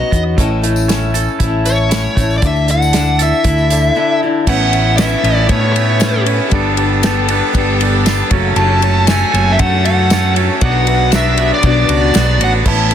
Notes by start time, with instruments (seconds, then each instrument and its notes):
Already playing: steel-string acoustic guitar B3 D#4 C#5, tonewheel organ C#4 D#4 B4, clean electric guitar D#4 F#4 C#5, lead electric guitar D#5
0.11 fingered electric bass E2, clean electric guitar B3, steel-string acoustic guitar D#4 F#4 C#5, kick, closed hi-hat
0.36 fingered electric bass A1, clean electric guitar A2, steel-string acoustic guitar A3 C#4 E4, tonewheel organ C#4 E4 A4, reed electric piano E4 A4 C#5, kick, closed hi-hat, tambourine
0.40 steel-string acoustic guitar A4
0.62 clean electric guitar A3, steel-string acoustic guitar C#4 E4 A4, closed hi-hat, tambourine
0.76 tambourine
0.88 steel-string acoustic guitar A2 A3 E4 A4, clean electric guitar C#4, snare, closed hi-hat, tambourine
1.03 tambourine
1.14 steel-string acoustic guitar C#4 E4, clean electric guitar A4, closed hi-hat, tambourine
1.28 tambourine
1.39 fingered electric bass A1, steel-string acoustic guitar A3 C#4 A4, clean electric guitar E4, kick, closed hi-hat, tambourine
1.64 clean electric guitar A3, reed electric piano E4 A4 C#5, lead electric guitar C#5, closed hi-hat, tambourine
1.89 steel-string acoustic guitar A2 A3 C#4 A4, clean electric guitar E4, snare, closed hi-hat, tambourine
2.15 fingered electric bass A1, clean electric guitar A3, steel-string acoustic guitar C#4 E4 A4, kick, closed hi-hat, tambourine
2.30 tambourine
2.38 clean electric guitar D3, lead electric guitar D5
2.42 fingered electric bass D2, steel-string acoustic guitar D4 E4 A4, tonewheel organ D4 E4 A4, reed electric piano E4 A4 D5, kick, closed hi-hat, tambourine
2.47 lead electric guitar E5
2.56 tambourine
2.68 clean electric guitar D3, steel-string acoustic guitar D4 E4 A4, lead electric guitar F#5, closed hi-hat, tambourine
2.82 tambourine
2.93 steel-string acoustic guitar D3 E4 A4, clean electric guitar D4, snare, closed hi-hat, tambourine
3.07 tambourine
3.19 steel-string acoustic guitar D4 E4, clean electric guitar A4, lead electric guitar E5, closed hi-hat, tambourine
3.33 tambourine
3.44 fingered electric bass D2, steel-string acoustic guitar D3 D4 A4, clean electric guitar E4, kick, closed hi-hat, tambourine
3.58 tambourine
3.70 clean electric guitar D3, reed electric piano E4 A4 D5, closed hi-hat, tambourine
3.95 steel-string acoustic guitar D3 D4 A4, clean electric guitar E4
4.22 clean electric guitar D3, steel-string acoustic guitar D4 E4 A4
4.47 fingered electric bass A1, clean electric guitar A2 A3 B3 C#4 E4, tonewheel organ B3 C#4 A4, reed electric piano C#4 A4 B4, lead electric guitar F#5, kick, crash
4.72 clean electric guitar B3 C#4 E4, reed electric piano C#4 A4 B4, ride
4.97 clean electric guitar A3 B3 C#4 E4, lead electric guitar E5, snare, ride, tambourine
5.23 fingered electric bass A1, clean electric guitar A2 A3 B3 C#4 E4, ride
5.49 fingered electric bass A2, steel-string acoustic guitar A2, clean electric guitar A3 B3 C#4 E4, lead electric guitar C#5, kick, ride
5.73 clean electric guitar B3 E4, lead electric guitar C#5, ride
5.77 clean electric guitar A2 A3 C#4
6.00 clean electric guitar A3 B3 C#4 E4, snare, ride, tambourine
6.26 clean electric guitar B3 E4, reed electric piano C#4 A4 C#5, ride
6.30 clean electric guitar C#4
6.51 fingered electric bass G1, clean electric guitar G3 B3 D4, tonewheel organ B3 G4 A4, reed electric piano G4 A4 B4, kick, ride
6.55 clean electric guitar A4
6.77 clean electric guitar B3 A4, reed electric piano G4 A4 B4, ride
6.82 clean electric guitar D4
7.03 clean electric guitar G3 B3 D4 A4, snare, ride, tambourine
7.28 clean electric guitar G3 B3 D4 A4, ride
7.54 fingered electric bass G1, clean electric guitar G3 B3 D4 A4, kick, ride
7.81 clean electric guitar G3 B3 D4 A4, ride
8.06 clean electric guitar G3 B3 D4 A4, snare, ride, tambourine
8.30 fingered electric bass F#1, clean electric guitar C#3 F#3 A3 C#4 A4, tonewheel organ C#4 F#4 A4, reed electric piano F#4 A4 C#5, kick, ride
8.34 clean electric guitar F#2
8.56 fingered electric bass F#1, clean electric guitar F#2 C#3 F#3 A3 C#4 A4, lead electric guitar A5, ride
8.82 clean electric guitar F#3 A3 C#4 A4, reed electric piano F#4 A4 C#5, ride
9.07 clean electric guitar F#3 A3 C#4 A4, lead electric guitar G#5, snare, ride, tambourine
9.32 fingered electric bass F#1, clean electric guitar F#2 C#3 F#3 A3 C#4 A4, ride
9.52 lead electric guitar E5
9.58 steel-string acoustic guitar F#2 C#3, fingered electric bass F#2, clean electric guitar F#3 A3 C#4 A4, lead electric guitar F#5, kick, ride
9.85 clean electric guitar F#2 C#3 F#3 A3 C#4 A4, lead electric guitar F#5, ride
10.10 clean electric guitar F#3 A3 C#4 A4, snare, ride, tambourine
10.36 clean electric guitar F#3 A3 C#4 A4, reed electric piano F#4 A4 C#5, ride
10.61 fingered electric bass B1, clean electric guitar B2 F#3 B3 D4, tonewheel organ D4 F#4 B4, reed electric piano F#4 B4 D5, lead electric guitar F#5, kick, ride
10.65 clean electric guitar F#4
10.87 clean electric guitar B3 D4 F#4, reed electric piano F#4 B4 E5, ride
11.12 clean electric guitar F#3 B3 D4 F#4, lead electric guitar E5, snare, ride, tambourine
11.37 clean electric guitar B2 F#3 B3 D4 F#4, ride
11.54 lead electric guitar D5
11.63 fingered electric bass B1, steel-string acoustic guitar B2, clean electric guitar F#3 B3 D4, lead electric guitar D5, kick, ride
11.67 clean electric guitar F#4
11.88 fingered electric bass C#2, clean electric guitar B2 F#3 B3 D4 F#4, ride
12.13 fingered electric bass B1, clean electric guitar F#3 B3 D4 F#4, snare, ride, tambourine
12.38 fingered electric bass A1, clean electric guitar F#4, reed electric piano F#4 B4 C#5, ride
12.42 clean electric guitar B3 D4, lead electric guitar F#5
12.65 fingered electric bass A1, clean electric guitar A2 E3 B3 C#4 E4, tonewheel organ C#4 B4, reed electric piano A4 B4 C#5, steel-string acoustic guitar A4, lead electric guitar A5, kick, crash
12.70 tonewheel organ A4
12.91 reed electric piano A4, ride